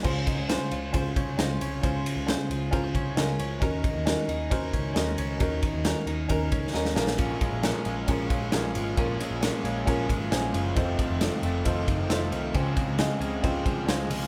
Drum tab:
CC |x---------------|----------------|----------------|----------------|
RD |--x-x-x-x-x-x-x-|x-x-x-x-x-x-x-x-|x-x-x-x-x-x-x-x-|x-x-x-x-x-x-----|
HH |----------------|----------------|----------------|----------------|
SD |----o-------o---|----o-------o---|----o-------o---|----o-------oooo|
BD |o-o-----o-o-----|o-------o-o-----|o-o-----o-o-----|o-o-----o-o-----|

CC |----------------|----------------|----------------|----------------|
RD |x-x-x-x-x-x-x-x-|x-x-x-x-x-x-x-x-|x-x-x-x-x-x-x-x-|x-x-x-x-x-x-x-x-|
HH |p---------------|----------------|----------------|--------------o-|
SD |----o-------o---|----o-------o---|----o-------o---|----o-------o---|
BD |o-o-----o-o-----|o-------o-o-----|o-o-----o-o-----|o-o-----o-o-----|